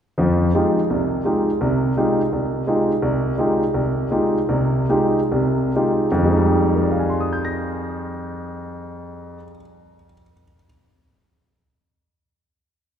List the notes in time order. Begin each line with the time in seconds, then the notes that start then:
0.18 F2 F3
0.54 G#3 D#4 F4 G4
0.90 C2 C3
1.25 G#3 D#4 F4 G4
1.61 C2 C3
1.97 G#3 D#4 F4 G4
2.33 C2
2.67 G#3 D#4 F4 G4
3.02 C2
3.38 G#3 D#4 F4 G4
3.74 C2
4.11 G#3 D#4 F4 G4
4.49 C2 C3
4.89 G#3 D#4 F4 G4
5.32 C2 C3
5.76 G#3 D#4 F4 G4
6.12 F2
6.18 F3
6.24 G#3
6.30 D#4
6.36 G3
6.75 A#4
6.83 D5
6.91 F5
6.99 G#5
7.10 C6
7.20 D#6
7.33 G6
7.45 A#6